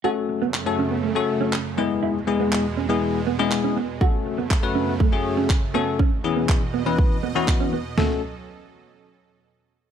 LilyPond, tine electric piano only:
\new Staff \with { instrumentName = "Tine electric piano" } { \time 4/4 \key fis \dorian \tempo 4 = 121 <a cis' fis' a'>8. r8 <a cis' fis' a'>8 r8 <a cis' fis' a'>8. r8 <gis b e' gis'>8~ | <gis b e' gis'>16 r16 <gis b e' gis'>8. r8 <gis b e' gis'>8 r8 <gis b e' gis'>8. r8 | <a cis' fis' a'>8. r8 <a cis' fis' b'>8 r8 <a cis' fis' gis'>8. r8 <a cis' fis' a'>8 | r8 <e b cis' e' gis'>8. r8 <e b cis' e' b'>8 r8 <e b cis' e' fis'>8. r8 |
<a cis' fis' a'>8 r2. r8 | }